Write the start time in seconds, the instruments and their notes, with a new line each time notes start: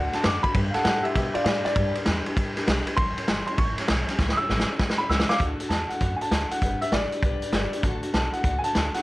Already playing: upright bass D2, steel-string acoustic guitar A3 D4 F#4 A4, upright piano F#5
0.13 steel-string acoustic guitar D4 F#4 A4, upright piano A5, muted upright bass stroke, snare, ride
0.24 upright bass F#2, steel-string acoustic guitar D3 A3 D4 F#4 A4, upright piano D6, snare, ride
0.43 steel-string acoustic guitar D4 F#4 A4, upright piano B5, kick, ride
0.54 upright bass G2, steel-string acoustic guitar G3 D4 G4 B4, kick, ride
0.71 upright piano A4 F5 F#5, snare, ride
0.75 steel-string acoustic guitar D4 G4 B4, muted upright bass stroke
0.84 upright bass A2, steel-string acoustic guitar G3 D4 G4 B4, upright piano A4 F#5, snare, ride
1.03 upright piano G4 E5, steel-string acoustic guitar G4 B4, muted upright bass stroke, ride
1.07 steel-string acoustic guitar D4
1.16 upright bass B2, steel-string acoustic guitar G3 D4 G4 B4, upright piano G4 E5, kick, snare, ride
1.34 steel-string acoustic guitar D4 G4 B4, upright piano F4 D5, muted upright bass stroke, ride
1.44 upright bass A2, steel-string acoustic guitar G3 D4 G4 B4, upright piano F4 D5, snare, ride
1.65 steel-string acoustic guitar D4 B4, upright piano D5, muted upright bass stroke, snare, ride
1.76 upright bass G2, steel-string acoustic guitar G3 D4 G4 B4, kick, ride
1.95 steel-string acoustic guitar D4 G4 B4, ride
2.06 upright bass E2, steel-string acoustic guitar G3 D4 G4 B4, snare, ride
2.26 steel-string acoustic guitar D4 G4 B4, muted upright bass stroke, ride
2.36 steel-string acoustic guitar G3 D4 G4 B4, kick, ride
2.56 steel-string acoustic guitar D4 G4 B4, muted upright bass stroke, snare, ride
2.67 upright bass B1, steel-string acoustic guitar G3 D4 G4 B4, snare, ride
2.87 steel-string acoustic guitar D4 G4 B4, muted upright bass stroke, ride
2.97 upright bass A1, steel-string acoustic guitar A2 E3 G3 C#4 E4 C#5, upright piano C6, kick, ride
3.17 steel-string acoustic guitar G3 C#4 E4 C#5, muted upright bass stroke, ride
3.28 upright bass G1, steel-string acoustic guitar A2 E3 G3 C#4 E4 C#5, snare, ride
3.47 steel-string acoustic guitar G3 C#4 E4 C#5, upright piano C6, muted upright bass stroke, ride
3.58 upright bass A1, steel-string acoustic guitar G3 C#4 E4, upright piano C#6, kick, ride
3.63 steel-string acoustic guitar C#5
3.78 steel-string acoustic guitar G3 C#4 E4 C#5, muted upright bass stroke, snare, ride
3.88 upright bass B1, steel-string acoustic guitar A2 E3 G3 C#4 E4 C#5, snare, ride
4.08 steel-string acoustic guitar G3 C#4 E4 C#5, muted upright bass stroke, snare, ride
4.19 upright bass C#2, steel-string acoustic guitar A2 E3 G3 C#4 E4 C#5, kick, snare
4.29 snare
4.33 upright piano D#6
4.37 steel-string acoustic guitar E4 C#5, upright piano E6
4.42 steel-string acoustic guitar G3 C#4
4.49 upright bass A1, steel-string acoustic guitar A2 E3 G3 C#4 E4 C#5, snare
4.59 snare
4.69 steel-string acoustic guitar G3 C#4 E4 C#5, muted upright bass stroke
4.79 steel-string acoustic guitar G3 C#4 E4 C#5, kick, snare
4.89 snare
4.98 steel-string acoustic guitar C#4 E4 C#5, upright piano B5
5.02 steel-string acoustic guitar G3
5.09 upright bass C#2, steel-string acoustic guitar A2 E3 G3 C#4 E4 C#5, upright piano E6, snare
5.20 snare
5.29 steel-string acoustic guitar G3 C#4 E4 C#5, upright piano F5 D6, muted upright bass stroke, snare
5.40 upright bass D2, steel-string acoustic guitar D3 A3 D4 F#4 A4, kick, closed hi-hat
5.59 steel-string acoustic guitar D4 F#4 A4, muted upright bass stroke, closed hi-hat
5.69 upright bass E2, steel-string acoustic guitar A3 D4 F#4, upright piano A5, snare, closed hi-hat
5.74 steel-string acoustic guitar A4
5.90 steel-string acoustic guitar D4 F#4 A4, upright piano F#5, muted upright bass stroke, closed hi-hat
6.00 upright bass F#2, steel-string acoustic guitar D3 A3 D4 F#4 A4, kick, closed hi-hat
6.16 upright piano G#5
6.21 steel-string acoustic guitar D4 F#4 A4, upright piano A5, muted upright bass stroke, closed hi-hat
6.31 upright bass D2, steel-string acoustic guitar A3 D4 F#4 A4, snare, closed hi-hat
6.51 steel-string acoustic guitar D4 F#4 A4, upright piano F#5, closed hi-hat
6.62 upright bass G1, steel-string acoustic guitar G3 D4 G4 B4, kick, closed hi-hat
6.81 steel-string acoustic guitar D4 G4 B4, upright piano E5, closed hi-hat
6.92 upright bass A1, steel-string acoustic guitar G3 D4 G4 B4, upright piano D5, snare, closed hi-hat
7.11 steel-string acoustic guitar G4 B4, muted upright bass stroke, closed hi-hat
7.15 steel-string acoustic guitar D4
7.23 upright bass B1, steel-string acoustic guitar G3 D4 G4 B4, kick, closed hi-hat
7.41 steel-string acoustic guitar D4 G4 B4, muted upright bass stroke, closed hi-hat
7.52 upright bass G1, steel-string acoustic guitar G3 D4 G4 B4, snare, closed hi-hat
7.72 steel-string acoustic guitar D4 G4 B4, muted upright bass stroke, closed hi-hat
7.83 upright bass A1, steel-string acoustic guitar D3 A3 D4 F#4 A4, kick, closed hi-hat
8.02 steel-string acoustic guitar D4 F#4 A4, muted upright bass stroke, closed hi-hat
8.12 upright bass B1, steel-string acoustic guitar A3 D4 F#4 A4, upright piano A5, snare, closed hi-hat
8.32 steel-string acoustic guitar D4 F#4 A4, upright piano F#5, muted upright bass stroke, closed hi-hat
8.43 upright bass C#2, steel-string acoustic guitar D3 A3 D4 F#4 A4, kick, closed hi-hat
8.59 steel-string acoustic guitar F#4 A4, upright piano G#5
8.64 steel-string acoustic guitar D4, upright piano A5, closed hi-hat
8.72 upright bass D2, steel-string acoustic guitar A3 D4 F#4 A4, snare, closed hi-hat
8.93 steel-string acoustic guitar D4 F#4 A4, upright piano F#5, snare, closed hi-hat